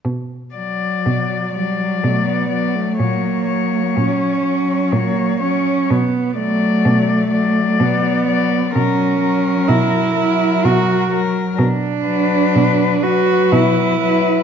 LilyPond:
<<
  \new Staff \with { instrumentName = "Cello" } { \time 3/4 \key b \minor \tempo 4 = 62 r8 d''4 d''4 d''8 | cis''8 cis''4 cis''4 cis''8 | r8 d''4 d''4 d''8 | ais'8 ais'4 ais'4 ais'8 |
r8 b'4 b'4 b'8 | }
  \new Staff \with { instrumentName = "Cello" } { \time 3/4 \key b \minor r4 fis8 g8 a16 b8 a16 | ais4 cis'4 ais8 cis'8 | b8 a4. b4 | cis'4 e'4 fis'8 r8 |
d'4. fis'8 e'4 | }
  \new Staff \with { instrumentName = "Cello" } { \clef bass \time 3/4 \key b \minor r8 fis4 fis4 fis8 | fis8 fis4 fis4 fis8 | r8 fis4 fis4 fis8 | fis8 fis4 fis4 fis8 |
r8 fis4 fis4 fis8 | }
  \new Staff \with { instrumentName = "Cello" } { \clef bass \time 3/4 \key b \minor b,4 b,4 b,4 | ais,4 ais,4 ais,4 | b,4 b,4 b,4 | b,4 b,4 b,4 |
b,4 b,4 b,4 | }
>>